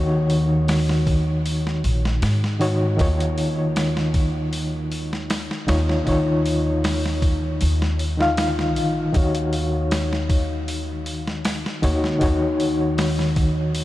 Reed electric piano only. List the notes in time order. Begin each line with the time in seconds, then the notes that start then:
Already playing: D#3 D#4 F#4 C#5
2.59 D#3 D#4 F#4 C#5
2.96 D#3 D#4 F4
3.01 C#5
5.67 D#3 D#4 F4 C#5
6.04 D#3 D#4 F4
6.09 C#5
8.17 D#3 D#4 F4
8.22 F5
9.13 D#3 D#4 F#4
9.17 C#5
11.82 D#3 D#4 F#4 C#5
12.19 D#3 D#4 F#4
12.23 C#5